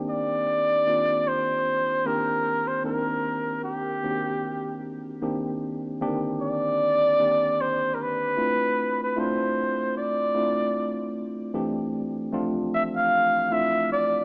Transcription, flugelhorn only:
0.10 D5
1.28 C5
2.06 A#4
2.67 C5
2.85 A#4
3.64 G4
6.42 D5
7.61 C5
7.94 A#4
8.02 B4
9.03 B4
9.19 C5
9.98 D5
12.74 E5
12.96 F5
13.53 E5
13.92 D5

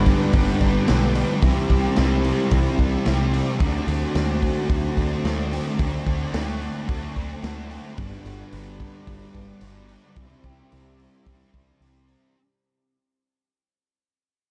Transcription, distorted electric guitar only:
Already playing: G2 D3 G3 D4
0.33 G2 D3 G3
0.87 G2 D3 G3
1.43 C3 G3 C4
1.97 C3 G3 C4
2.51 C3 G3 C4
3.05 C3 G3 C4
3.60 D3 A3 D4
4.14 D3 A3 D4
4.69 D3 A3 D4
5.24 D3 A3 D4
5.79 D3 A3 D4
6.33 D3 A3 D4
6.88 D3 A3 D4
7.43 D3 A3 D4
7.97 G2 D3 G3
8.53 G2 D3 G3
9.07 G2 D3 G3
9.62 G2 D3 G3
10.17 C3 G3 C4
10.72 C3 G3 C4
11.26 C3 G3 C4
11.82 C3 G3 C4

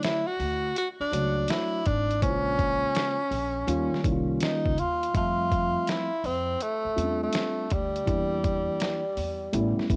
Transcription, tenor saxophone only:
0.04 E4
0.27 F#4
0.78 F#4
1.01 D4
1.50 E4
1.86 D4
2.23 C#4
4.43 D#4
4.80 F4
5.17 F4
5.90 E4
6.26 C4
6.62 A3
7.23 A3
7.73 G3

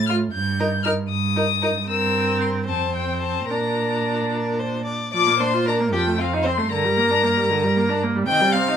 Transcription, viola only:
0.09 F4
0.60 D#4
0.85 D#4
1.36 D#4
1.63 D#4
1.89 C4
2.69 C4
3.50 D4
5.14 F3
5.27 A#3
5.40 D4
5.54 F4
5.68 D4
5.81 A#3
5.93 F3
6.07 A3
6.21 C4
6.34 D#4
6.46 C4
6.58 A3
6.72 D3
6.85 G3
6.97 A#3
7.11 D4
7.24 A#3
7.37 G3
7.50 D3
7.64 G3
7.77 A#3
7.90 D4
8.04 A#3
8.16 G3
8.29 D#3
8.41 G3
8.55 C4
8.68 D#4

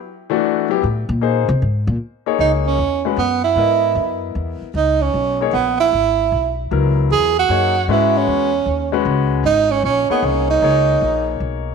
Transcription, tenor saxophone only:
2.40 D#4
2.67 C#4
3.18 B3
3.44 E4
4.76 D#4
5.02 C#4
5.53 B3
5.80 E4
7.12 G#4
7.39 F#4
7.91 E4
8.18 C#4
9.46 D#4
9.71 C#4
9.85 C#4
10.11 B3
10.25 C#4
10.50 D#4

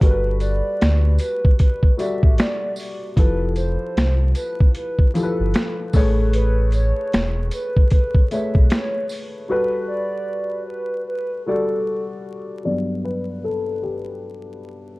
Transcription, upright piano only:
0.01 G3 F#4 A4 A#4
0.10 B4
1.97 G3 F#4 A4 D5
3.16 F3 E4 G4 A4
5.14 F3 E4 G4 A4
5.23 B4
5.94 A3 G#4 B4 C#5
8.31 A3 G#4 B4 C#5
9.48 G3 F#4 A4 B4
11.46 G3 F#4 A4 D5
12.64 G2 F#3 B3 D5
13.04 B4
13.44 A4
13.83 G4

